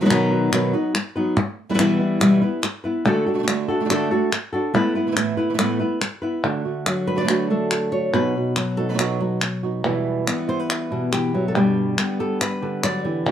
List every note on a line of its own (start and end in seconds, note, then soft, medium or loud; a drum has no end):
0.01 0.04 D#3 medium
0.01 0.04 F#3 medium
0.01 0.05 F#3 medium
0.01 0.04 B3 soft
0.01 0.05 B3 medium
0.01 0.05 D#4 soft
0.01 0.05 D#4 medium
0.01 0.05 F#4 soft
0.01 0.05 B4 medium
0.05 0.09 D#3 medium
0.05 0.09 F#3 medium
0.05 0.09 B3 medium
0.05 0.10 B3 medium
0.05 0.09 D#4 medium
0.05 0.10 D#4 medium
0.05 0.10 F#4 medium
0.05 0.10 B4 medium
0.10 0.30 B2 medium
0.10 0.51 B2 medium
0.10 0.51 D#3 medium
0.10 0.31 F#3 medium
0.10 0.52 F#3 medium
0.10 0.31 B3 medium
0.10 0.52 B3 medium
0.10 0.31 D#4 medium
0.10 0.52 D#4 loud
0.10 0.30 F#4 medium
0.10 0.52 B4 medium
0.10 clap medium
0.31 0.52 B3 soft
0.31 0.52 D#4 soft
0.31 0.51 F#4 soft
0.52 0.73 B2 medium
0.52 0.73 D#3 medium
0.52 0.73 F#3 medium
0.52 0.73 B3 medium
0.52 0.73 D#4 medium
0.52 0.72 F#4 medium
0.52 0.72 B4 medium
0.52 clap medium
0.73 0.94 F#3 soft
0.73 0.94 B3 soft
0.73 0.94 D#4 soft
0.73 0.94 F#4 soft
0.73 0.94 B4 medium
0.94 muted nylon-string guitar stroke soft
0.94 clap medium
1.16 1.37 F#3 soft
1.16 1.37 B3 soft
1.16 1.36 D#4 soft
1.16 1.36 B4 medium
1.37 muted nylon-string guitar stroke medium
1.69 1.73 B2 soft
1.69 1.73 E3 soft
1.69 1.73 G3 medium
1.69 1.73 G3 soft
1.69 1.73 B3 medium
1.69 1.74 B3 soft
1.69 1.74 E4 medium
1.69 1.74 E4 soft
1.69 1.74 B4 soft
1.74 1.78 B2 soft
1.74 1.78 E3 medium
1.74 1.78 G3 medium
1.74 1.78 G3 soft
1.74 1.78 B3 medium
1.74 1.78 E4 medium
1.74 1.79 E4 medium
1.74 1.78 B4 medium
1.78 1.99 E2 medium
1.78 1.99 B2 medium
1.78 2.19 E3 medium
1.78 1.99 E3 medium
1.78 2.20 G3 medium
1.78 1.99 G3 medium
1.78 2.20 B3 medium
1.78 1.99 B3 medium
1.78 2.21 E4 medium
1.78 1.98 E4 medium
1.78 2.21 B4 loud
1.78 clap medium
2.00 2.20 E3 soft
2.00 2.21 G3 soft
2.00 2.21 B3 soft
2.00 2.20 E4 soft
2.20 2.41 E2 medium
2.20 2.41 B2 medium
2.20 2.41 E3 medium
2.20 2.42 E3 medium
2.20 2.41 G3 medium
2.20 2.42 G3 medium
2.20 2.42 B3 medium
2.20 2.41 B3 medium
2.20 2.41 E4 medium
2.20 2.40 E4 medium
2.20 2.40 B4 medium
2.20 clap medium
2.42 2.62 E3 soft
2.42 2.63 G3 soft
2.42 2.63 B3 soft
2.42 2.62 E4 soft
2.42 2.63 E4 soft
2.42 2.62 B4 medium
2.63 muted nylon-string guitar stroke medium
2.63 clap medium
2.84 3.05 B3 soft
2.84 3.05 E4 soft
2.84 3.04 B4 medium
3.05 3.25 D3 medium
3.05 3.26 A3 medium
3.05 3.26 D4 medium
3.05 3.26 F#4 medium
3.05 3.25 A4 medium
3.05 muted nylon-string guitar stroke medium
3.26 3.33 A3 soft
3.26 3.34 D4 soft
3.26 3.47 D4 soft
3.26 3.34 F#4 soft
3.26 3.47 F#4 soft
3.26 3.47 A4 soft
3.34 3.37 D3 soft
3.34 3.38 A3 soft
3.34 3.38 D4 soft
3.34 3.39 F#4 soft
3.38 3.42 D3 medium
3.38 3.42 A3 soft
3.38 3.43 D4 soft
3.38 3.43 F#4 medium
3.43 3.46 D3 medium
3.43 3.47 A3 medium
3.43 3.47 D4 medium
3.43 3.48 F#4 medium
3.47 3.68 D3 medium
3.47 3.68 A3 medium
3.47 3.68 D4 medium
3.47 3.67 F#4 medium
3.47 muted nylon-string guitar stroke medium
3.47 clap medium
3.68 3.80 A3 soft
3.68 3.80 D4 soft
3.68 3.89 D4 soft
3.68 3.81 F#4 soft
3.68 3.89 F#4 medium
3.68 3.89 A4 medium
3.80 3.84 D3 soft
3.80 3.84 A3 soft
3.80 3.85 D4 soft
3.80 3.85 F#4 soft
3.85 3.88 D3 medium
3.85 3.89 A3 medium
3.85 3.89 D4 medium
3.85 3.89 F#4 medium
3.89 4.10 D3 medium
3.89 4.10 A3 medium
3.89 4.10 D4 medium
3.89 4.09 F#4 medium
3.89 4.11 F#4 medium
3.89 4.10 A4 medium
3.89 clap medium
4.11 4.31 A3 soft
4.11 4.31 D4 soft
4.11 4.32 D4 soft
4.11 4.31 F#4 soft
4.11 4.32 F#4 soft
4.11 4.31 A4 medium
4.32 muted nylon-string guitar stroke soft
4.32 clap medium
4.53 4.74 D4 soft
4.53 4.74 F#4 medium
4.53 4.73 A4 soft
4.74 4.94 A3 medium
4.74 4.95 B3 medium
4.74 4.95 E4 medium
4.74 4.94 B4 medium
4.74 muted nylon-string guitar stroke medium
4.94 5.06 A3 soft
4.94 5.07 B3 soft
4.94 5.15 B3 soft
4.94 5.07 E4 soft
4.94 5.16 E4 soft
4.94 5.16 B4 medium
5.07 5.10 E3 soft
5.07 5.11 A3 soft
5.07 5.11 B3 soft
5.07 5.11 E4 soft
5.12 5.15 E3 soft
5.12 5.16 A3 medium
5.12 5.16 B3 medium
5.12 5.16 E4 medium
5.16 5.37 A2 medium
5.16 5.37 E3 medium
5.16 5.37 A3 medium
5.16 5.37 B3 medium
5.16 5.36 E4 medium
5.16 muted nylon-string guitar stroke medium
5.16 clap medium
5.37 5.49 A3 soft
5.37 5.49 B3 soft
5.37 5.58 B3 soft
5.37 5.50 E4 soft
5.37 5.58 E4 soft
5.37 5.58 B4 medium
5.50 5.53 E3 soft
5.50 5.53 A3 soft
5.50 5.54 B3 soft
5.50 5.54 E4 soft
5.54 5.58 E3 medium
5.54 5.58 A3 medium
5.54 5.58 B3 medium
5.54 5.59 E4 medium
5.58 5.79 A2 medium
5.58 5.79 E3 medium
5.58 5.79 A3 medium
5.58 5.79 B3 medium
5.58 5.80 B3 medium
5.58 5.79 E4 medium
5.58 5.78 B4 medium
5.58 clap medium
5.80 6.01 A3 soft
5.80 6.01 B3 soft
5.80 6.00 B3 soft
5.80 6.00 E4 soft
5.80 6.01 E4 soft
5.80 6.00 B4 soft
6.01 muted nylon-string guitar stroke soft
6.01 clap medium
6.22 6.44 B3 soft
6.22 6.43 E4 soft
6.22 6.43 B4 soft
6.44 6.64 D3 medium
6.44 8.11 D3 medium
6.44 6.64 A3 medium
6.44 6.65 D4 medium
6.44 6.64 F#4 medium
6.65 6.86 A3 soft
6.65 6.86 D4 soft
6.65 6.85 F#4 soft
6.86 8.55 F#3 medium
6.86 muted nylon-string guitar stroke medium
6.86 clap medium
7.07 7.14 A3 soft
7.07 7.15 D4 soft
7.07 7.15 F#4 soft
7.07 7.50 B4 medium
7.15 7.19 D3 soft
7.15 7.19 A3 soft
7.15 7.19 D4 soft
7.15 7.20 F#4 soft
7.15 8.14 D5 medium
7.20 7.23 D3 soft
7.20 7.23 A3 soft
7.20 7.24 D4 soft
7.20 7.24 F#4 medium
7.24 7.27 D3 medium
7.24 7.28 A3 medium
7.24 7.28 D4 medium
7.24 7.29 F#4 medium
7.28 7.49 D3 medium
7.28 7.49 A3 medium
7.28 7.50 D4 medium
7.28 8.12 F#4 soft
7.28 7.49 F#4 medium
7.28 clap medium
7.50 8.11 A3 medium
7.50 7.70 A3 soft
7.50 7.71 D4 soft
7.50 7.70 F#4 soft
7.50 7.92 A4 soft
7.71 muted nylon-string guitar stroke soft
7.71 clap medium
7.92 8.14 A3 soft
7.92 8.14 D4 soft
7.92 8.13 F#4 soft
7.92 8.14 C#5 medium
8.13 9.82 B2 medium
8.13 8.34 B2 medium
8.13 8.35 F#3 medium
8.13 8.35 B3 medium
8.13 8.35 D#4 medium
8.13 8.34 F#4 medium
8.13 8.88 B4 medium
8.35 8.56 B3 soft
8.35 8.56 D#4 soft
8.35 8.56 F#4 soft
8.56 9.19 F#3 medium
8.56 muted nylon-string guitar stroke soft
8.56 clap medium
8.77 8.89 B3 soft
8.77 8.89 D#4 soft
8.77 8.89 F#4 soft
8.77 9.31 A4 medium
8.89 8.93 F#3 soft
8.89 8.93 B3 soft
8.89 8.94 D#4 soft
8.89 8.94 F#4 soft
8.89 9.85 B4 medium
8.94 8.97 F#3 medium
8.94 8.98 B3 medium
8.94 8.98 D#4 medium
8.94 8.98 F#4 medium
8.98 9.19 B2 medium
8.98 9.19 F#3 medium
8.98 9.20 B3 medium
8.98 9.20 D#4 medium
8.98 9.19 F#4 medium
8.98 clap medium
9.20 9.82 F#3 medium
9.20 9.41 B3 soft
9.20 9.41 D#4 soft
9.20 9.41 F#4 soft
9.41 muted nylon-string guitar stroke soft
9.41 clap medium
9.63 9.85 B3 soft
9.63 9.84 D#4 soft
9.63 9.84 F#4 soft
9.84 10.26 E2 medium
9.84 10.26 B2 medium
9.84 11.12 E3 medium
9.84 10.26 E3 medium
9.84 10.27 G3 medium
9.84 10.27 B3 medium
9.84 10.27 E4 medium
10.27 10.48 E3 soft
10.27 10.48 G3 soft
10.27 11.34 B3 medium
10.27 10.47 B3 soft
10.27 10.47 E4 soft
10.27 clap medium
10.48 10.91 E3 soft
10.48 10.91 G3 soft
10.48 10.90 B3 soft
10.48 10.89 E4 soft
10.48 10.60 C5 medium
10.60 11.56 B4 medium
10.70 clap medium
10.91 11.53 B2 medium
10.91 11.12 E3 soft
10.91 11.12 G3 soft
10.91 11.12 B3 soft
10.91 11.12 E4 soft
11.12 11.35 E3 soft
11.12 11.48 G4 medium
11.12 muted nylon-string guitar stroke medium
11.12 clap medium
11.34 11.56 E3 soft
11.34 11.56 F#3 medium
11.34 11.55 G3 soft
11.34 11.55 B3 soft
11.34 11.54 E4 soft
11.48 11.55 A4 medium
11.55 11.97 G2 medium
11.55 11.97 B2 medium
11.55 11.96 D3 medium
11.55 11.97 G3 medium
11.55 13.04 G3 medium
11.55 11.98 B3 medium
11.55 12.20 G4 medium
11.55 11.98 G4 medium
11.97 12.18 D3 soft
11.97 12.19 G3 soft
11.97 12.83 B3 medium
11.97 12.19 B3 soft
11.97 12.18 G4 soft
11.97 clap medium
12.19 12.63 D3 soft
12.19 12.62 G3 soft
12.19 12.62 B3 soft
12.19 12.61 G4 soft
12.19 12.41 A4 medium
12.41 13.27 B4 medium
12.41 clap medium
12.62 13.24 D3 medium
12.62 12.83 D3 soft
12.62 12.83 G3 soft
12.62 12.83 B3 soft
12.62 12.83 G4 soft
12.83 13.05 F#3 medium
12.83 13.27 D5 medium
12.83 muted nylon-string guitar stroke soft
12.83 clap medium
13.04 13.25 D3 soft
13.04 13.26 E3 medium
13.04 13.26 G3 soft
13.04 13.26 B3 soft
13.04 13.25 G4 soft
13.26 13.31 D3 medium
13.26 13.31 A3 medium
13.26 13.31 D4 medium
13.26 13.31 F#4 soft
13.26 13.31 F#4 medium